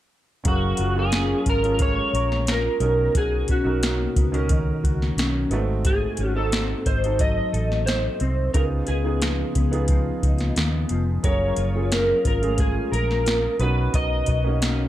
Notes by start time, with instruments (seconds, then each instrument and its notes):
0.44 fingered electric bass F#1, clean electric guitar F#3 A#4, upright piano C#4 G#4 A#4 F5, kick, closed hi-hat
0.48 electric slide guitar F#4
0.77 fingered electric bass F#1, clean electric guitar F4, closed hi-hat
0.95 upright piano C#4 F4 G#4 A#4, electric slide guitar G#4
1.12 clean electric guitar C#4, snare, closed hi-hat
1.46 fingered electric bass G#1, clean electric guitar F4, electric slide guitar A#4, kick, closed hi-hat
1.63 upright piano C#4 F4 G#4 A4, closed hi-hat
1.72 upright piano A#4
1.79 clean electric guitar G#3, electric slide guitar C#5, kick, closed hi-hat
2.13 fingered electric bass A#1, clean electric guitar A#4, closed hi-hat
2.32 snare
2.47 clean electric guitar F4, snare, closed hi-hat
2.52 electric slide guitar A#4
2.80 fingered electric bass B1, clean electric guitar B2, upright piano C#4 D#4 F#4 A#4, closed hi-hat
3.15 fingered electric bass B1, clean electric guitar B2 F#4, electric slide guitar G#4, kick, closed hi-hat
3.48 clean electric guitar C#4, electric slide guitar F#4, kick, closed hi-hat
3.64 fingered electric bass B1, upright piano C#4 D#4 F#4 A#4
3.83 clean electric guitar A#3, snare, closed hi-hat
4.16 fingered electric bass C#2, clean electric guitar B3, kick, closed hi-hat
4.32 upright piano C#4 D#4 F#4 A#4, clean electric guitar C#4, closed hi-hat
4.49 clean electric guitar D#3, kick, closed hi-hat
4.84 fingered electric bass C#2, clean electric guitar F#4, kick, closed hi-hat
5.02 snare
5.16 fingered electric bass B1, clean electric guitar C#4, snare, closed hi-hat
5.50 fingered electric bass G#1, clean electric guitar G#2, upright piano A3 B3 D#4 F#4, closed hi-hat
5.57 upright piano C4
5.85 clean electric guitar G#2 A4, electric slide guitar G#4, kick, closed hi-hat
6.17 fingered electric bass G#1, clean electric guitar C#4, closed hi-hat
6.35 upright piano C4 D#4 F#4 A4, clean electric guitar D#4, electric slide guitar A4
6.52 clean electric guitar C4, snare, closed hi-hat
6.86 fingered electric bass G#1, clean electric guitar D#4, electric slide guitar C5, kick, closed hi-hat
7.02 upright piano C4 D#4 F#4 A4, closed hi-hat
7.19 clean electric guitar F#3, electric slide guitar D#5, kick, closed hi-hat
7.53 fingered electric bass A1, clean electric guitar A4, closed hi-hat
7.72 snare
7.86 clean electric guitar D#4, electric slide guitar C5, snare, closed hi-hat
8.20 fingered electric bass C2, clean electric guitar C4, closed hi-hat
8.54 fingered electric bass C#2, clean electric guitar C#3 D#4, upright piano B3 D#4 F4 G#4, electric slide guitar A#4, kick, closed hi-hat
8.87 fingered electric bass C#2, clean electric guitar B3, electric slide guitar G#4, closed hi-hat
9.04 upright piano B3 D#4 F4 G#4
9.22 clean electric guitar F3, snare, closed hi-hat
9.55 fingered electric bass C#2, clean electric guitar B3, kick, closed hi-hat
9.71 upright piano B3 D#4 F4 G#4, closed hi-hat
9.88 clean electric guitar F3, kick, closed hi-hat
10.23 fingered electric bass C#2, clean electric guitar D#4, kick, closed hi-hat
10.38 snare, closed hi-hat
10.56 fingered electric bass D#2, clean electric guitar B3, snare, closed hi-hat
10.89 fingered electric bass F1, clean electric guitar F3, closed hi-hat
11.23 fingered electric bass F#1, clean electric guitar F#3 A#4, upright piano A#3 C#4 F4 G#4, electric slide guitar C#5, kick, closed hi-hat
11.56 fingered electric bass F#1, clean electric guitar F4, closed hi-hat
11.74 upright piano A#3 C#4 F4 G#4
11.92 clean electric guitar C#4, electric slide guitar A#4, snare, closed hi-hat
12.25 fingered electric bass G#1, clean electric guitar F4, electric slide guitar A#4, kick, closed hi-hat
12.41 upright piano A3 C#4 F4 G#4, closed hi-hat
12.48 upright piano A#3
12.58 clean electric guitar G#3, electric slide guitar G#4, kick, closed hi-hat
12.92 fingered electric bass A#1, clean electric guitar A#4, electric slide guitar A#4, closed hi-hat
13.11 snare
13.26 clean electric guitar F4, snare, closed hi-hat
13.59 fingered electric bass B1, clean electric guitar B2, upright piano B3 C#4 D#4 F#4, electric slide guitar B4, closed hi-hat
13.93 fingered electric bass B1, clean electric guitar B2 A#4, electric slide guitar D#5, kick, closed hi-hat
14.26 fingered electric bass B1, clean electric guitar F#4, kick, closed hi-hat
14.44 upright piano A#3 C#4 D#4 F#4
14.62 clean electric guitar C#4, snare, closed hi-hat